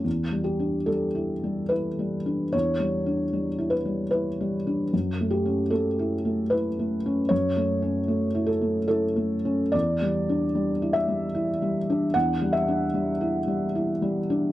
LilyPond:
<<
  \new Staff \with { instrumentName = "Felt piano" } { \time 3/4 \key e \dorian \tempo 4 = 75 r8 g'8 a'4 b'4 | cis''4. b'8 b'4 | r8 g'8 a'4 b'4 | cis''4. a'8 a'4 |
d''4. e''4. | fis''8 e''2~ e''8 | }
  \new Staff \with { instrumentName = "Felt piano" } { \time 3/4 \key e \dorian \tuplet 3/2 { e,8 g8 d'8 g8 e'8 g8 e'8 g8 d'8 } | \tuplet 3/2 { e,8 g8 d'8 g8 e'8 g8 e'8 g8 d'8 } | \tuplet 3/2 { fis,8 a8 cis'8 a8 e'8 a8 e'8 a8 cis'8 } | \tuplet 3/2 { fis,8 a8 cis'8 a8 e'8 a8 e'8 a8 cis'8 } |
\tuplet 3/2 { e,8 g8 d'8 g8 e'8 g8 e'8 g8 d'8 } | \tuplet 3/2 { e,8 g8 d'8 g8 e'8 g8 e'8 g8 d'8 } | }
>>